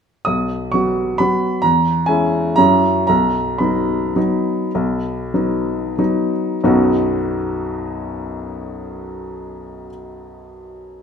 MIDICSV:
0, 0, Header, 1, 2, 480
1, 0, Start_track
1, 0, Key_signature, 5, "major"
1, 0, Tempo, 463320
1, 274, Time_signature, 3, 2, 24, 8
1, 2671, Tempo, 526778
1, 4111, Tempo, 587659
1, 5071, Tempo, 641026
1, 7471, Tempo, 614125
1, 9415, End_track
2, 0, Start_track
2, 0, Title_t, "Upright piano"
2, 0, Program_c, 0, 0
2, 257, Note_on_c, 0, 87, 73
2, 277, Note_on_c, 0, 35, 46
2, 482, Control_c, 0, 64, 127
2, 741, Note_on_c, 0, 85, 60
2, 749, Note_off_c, 0, 35, 0
2, 754, Note_off_c, 0, 87, 0
2, 766, Note_on_c, 0, 54, 31
2, 766, Note_on_c, 0, 59, 33
2, 774, Note_on_c, 0, 66, 37
2, 1206, Note_off_c, 0, 54, 0
2, 1207, Note_off_c, 0, 59, 0
2, 1211, Note_off_c, 0, 66, 0
2, 1225, Note_on_c, 0, 83, 75
2, 1236, Note_off_c, 0, 85, 0
2, 1244, Note_on_c, 0, 54, 37
2, 1252, Note_on_c, 0, 66, 43
2, 1253, Note_on_c, 0, 59, 36
2, 1257, Control_c, 0, 64, 0
2, 1670, Note_off_c, 0, 54, 0
2, 1674, Note_off_c, 0, 59, 0
2, 1674, Note_off_c, 0, 66, 0
2, 1676, Note_on_c, 0, 82, 79
2, 1698, Note_on_c, 0, 40, 56
2, 1701, Note_off_c, 0, 83, 0
2, 1891, Control_c, 0, 64, 127
2, 2137, Note_on_c, 0, 80, 74
2, 2148, Note_off_c, 0, 40, 0
2, 2150, Note_off_c, 0, 82, 0
2, 2159, Note_on_c, 0, 56, 43
2, 2161, Note_on_c, 0, 61, 39
2, 2166, Note_on_c, 0, 64, 48
2, 2625, Note_off_c, 0, 56, 0
2, 2625, Note_off_c, 0, 61, 0
2, 2628, Note_off_c, 0, 64, 0
2, 2649, Note_on_c, 0, 82, 86
2, 2655, Note_off_c, 0, 80, 0
2, 2669, Note_on_c, 0, 54, 49
2, 2671, Note_on_c, 0, 42, 61
2, 2675, Note_on_c, 0, 61, 46
2, 2679, Note_on_c, 0, 64, 46
2, 2686, Control_c, 0, 64, 0
2, 2884, Control_c, 0, 64, 127
2, 3101, Note_off_c, 0, 54, 0
2, 3103, Note_off_c, 0, 61, 0
2, 3105, Note_off_c, 0, 64, 0
2, 3106, Note_off_c, 0, 82, 0
2, 3119, Note_on_c, 0, 82, 77
2, 3124, Note_off_c, 0, 42, 0
2, 3138, Note_on_c, 0, 35, 57
2, 3146, Control_c, 0, 64, 0
2, 3305, Control_c, 0, 64, 127
2, 3588, Note_on_c, 0, 83, 54
2, 3594, Note_off_c, 0, 35, 0
2, 3599, Note_off_c, 0, 82, 0
2, 3605, Note_on_c, 0, 54, 34
2, 3610, Note_on_c, 0, 59, 39
2, 3614, Note_on_c, 0, 63, 40
2, 4074, Note_off_c, 0, 54, 0
2, 4076, Note_off_c, 0, 59, 0
2, 4078, Note_off_c, 0, 63, 0
2, 4112, Note_on_c, 0, 54, 40
2, 4115, Note_on_c, 0, 59, 41
2, 4119, Note_on_c, 0, 63, 44
2, 4126, Control_c, 0, 64, 0
2, 4555, Note_off_c, 0, 54, 0
2, 4556, Note_off_c, 0, 59, 0
2, 4558, Note_off_c, 0, 63, 0
2, 4593, Note_on_c, 0, 35, 54
2, 4782, Control_c, 0, 64, 127
2, 5059, Note_off_c, 0, 35, 0
2, 5075, Note_on_c, 0, 54, 35
2, 5078, Note_on_c, 0, 59, 37
2, 5080, Note_on_c, 0, 63, 38
2, 5530, Note_off_c, 0, 54, 0
2, 5531, Note_off_c, 0, 59, 0
2, 5532, Note_off_c, 0, 63, 0
2, 5559, Note_on_c, 0, 54, 42
2, 5560, Note_on_c, 0, 59, 42
2, 5561, Note_on_c, 0, 63, 48
2, 5571, Control_c, 0, 64, 0
2, 5801, Note_off_c, 0, 83, 0
2, 6017, Note_off_c, 0, 54, 0
2, 6018, Note_off_c, 0, 59, 0
2, 6018, Note_off_c, 0, 63, 0
2, 6046, Note_on_c, 0, 42, 50
2, 6047, Note_on_c, 0, 35, 60
2, 6050, Note_on_c, 0, 54, 52
2, 6052, Note_on_c, 0, 59, 51
2, 6054, Note_on_c, 0, 63, 52
2, 6054, Note_on_c, 0, 66, 50
2, 6246, Control_c, 0, 64, 127
2, 8507, Note_off_c, 0, 42, 0
2, 8508, Note_off_c, 0, 35, 0
2, 8511, Note_off_c, 0, 54, 0
2, 8513, Note_off_c, 0, 59, 0
2, 8515, Note_off_c, 0, 63, 0
2, 8515, Note_off_c, 0, 66, 0
2, 9415, End_track
0, 0, End_of_file